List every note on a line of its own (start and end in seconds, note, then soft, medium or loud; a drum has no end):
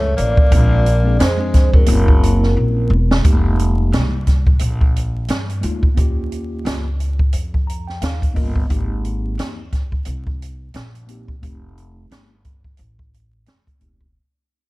0.00 0.16 C#2 medium
0.00 0.15 A3 medium
0.00 0.19 C#5 loud
0.17 0.50 A1 medium
0.17 1.15 A#3 medium
0.17 1.16 D5 loud
0.17 closed hi-hat medium
0.37 kick loud
0.50 1.16 A#1 loud
0.50 0.84 G#3 medium
0.50 0.85 C4 medium
0.50 0.86 D4 medium
0.50 0.86 F4 medium
0.50 kick loud
0.50 closed hi-hat medium
0.86 closed hi-hat medium
1.03 1.25 G#3 medium
1.03 1.25 C4 medium
1.03 1.26 D4 medium
1.03 1.27 G#4 medium
1.19 1.85 F2 medium
1.19 1.69 G#3 medium
1.19 1.70 C5 medium
1.19 snare loud
1.19 closed hi-hat loud
1.36 1.87 G#3 medium
1.36 1.85 C4 medium
1.36 1.88 D4 medium
1.36 1.88 G#4 medium
1.54 kick medium
1.54 snare soft
1.54 closed hi-hat medium
1.73 2.86 F#3 medium
1.73 2.87 A#4 medium
1.73 kick medium
1.85 2.53 F#1 loud
1.85 2.97 A#3 medium
1.85 2.97 C4 medium
1.85 2.98 C#4 medium
1.85 2.99 E4 medium
1.85 closed hi-hat loud
2.08 kick medium
2.23 closed hi-hat medium
2.43 snare soft
2.57 2.89 A#1 medium
2.90 3.23 E1 loud
3.11 snare loud
3.23 3.94 F1 loud
3.23 4.14 G#3 medium
3.23 4.15 A#3 medium
3.23 4.16 D#4 medium
3.23 4.16 G4 medium
3.23 kick loud
3.23 closed hi-hat medium
3.59 closed hi-hat medium
3.92 4.57 C2 medium
3.92 snare loud
3.92 closed hi-hat medium
4.27 kick medium
4.27 snare soft
4.27 closed hi-hat medium
4.46 kick medium
4.59 5.26 A#1 medium
4.59 closed hi-hat medium
4.81 kick medium
4.96 closed hi-hat medium
5.28 5.61 G2 medium
5.28 snare loud
5.28 closed hi-hat medium
5.49 closed hi-hat soft
5.61 5.96 D2 loud
5.61 5.86 G#3 medium
5.61 5.86 A#3 medium
5.61 5.87 D#4 medium
5.61 5.88 F4 medium
5.61 closed hi-hat medium
5.83 kick medium
5.95 6.62 D#2 medium
5.95 6.87 A#3 medium
5.95 6.88 C#4 medium
5.95 6.88 F4 medium
5.95 kick loud
5.95 closed hi-hat medium
5.99 6.89 G4 loud
6.32 closed hi-hat medium
6.65 7.30 C#2 medium
6.65 snare loud
6.65 closed hi-hat medium
7.00 closed hi-hat medium
7.19 kick medium
7.33 7.98 F2 medium
7.33 closed hi-hat medium
7.54 kick medium
7.67 7.86 A#5 medium
7.67 closed hi-hat medium
7.87 8.01 G5 medium
7.87 snare soft
8.02 8.38 D#2 medium
8.02 8.33 F5 medium
8.02 snare loud
8.02 closed hi-hat medium
8.22 kick medium
8.22 closed hi-hat medium
8.34 8.68 G1 loud
8.34 8.59 A#3 medium
8.34 8.59 C#4 medium
8.34 8.60 F4 medium
8.34 8.60 A#4 medium
8.34 8.67 D#5 medium
8.34 kick medium
8.34 open hi-hat soft
8.56 kick medium
8.67 9.35 G#1 loud
8.67 9.60 A#3 medium
8.67 9.60 C4 medium
8.67 9.61 D#4 medium
8.67 9.62 G4 medium
8.67 kick loud
8.67 closed hi-hat medium
9.05 closed hi-hat medium
9.38 10.03 D#2 medium
9.38 snare loud
9.38 closed hi-hat medium
9.72 kick medium
9.72 snare soft
9.72 closed hi-hat medium
9.92 kick medium
10.05 10.71 C2 medium
10.05 closed hi-hat medium
10.27 kick medium
10.42 closed hi-hat medium
10.74 11.39 A#1 medium
10.74 snare loud
10.74 closed hi-hat medium
10.95 closed hi-hat soft
11.07 11.32 A#3 medium
11.07 11.32 C4 medium
11.07 11.33 D#4 medium
11.07 11.33 G4 medium
11.07 closed hi-hat medium
11.28 kick medium
11.41 12.07 F1 loud
11.41 12.33 A3 medium
11.41 12.33 C4 medium
11.41 12.34 D#4 medium
11.41 12.34 G4 medium
11.41 kick loud
11.41 closed hi-hat medium
11.77 closed hi-hat medium
12.11 12.76 G1 medium
12.11 snare loud
12.11 closed hi-hat medium
12.45 kick medium
12.45 closed hi-hat soft
12.64 kick medium
12.77 13.44 A1 medium
12.77 closed hi-hat medium
12.99 kick medium
13.14 closed hi-hat medium
13.46 13.79 F1 medium
13.46 snare loud
13.46 closed hi-hat medium
13.67 kick medium
13.67 closed hi-hat soft
13.79 14.14 E1 medium
13.79 14.04 A3 medium
13.79 14.05 C4 medium
13.79 14.05 D#4 medium
13.79 14.06 G4 medium
13.79 kick medium
13.79 closed hi-hat medium
14.01 kick medium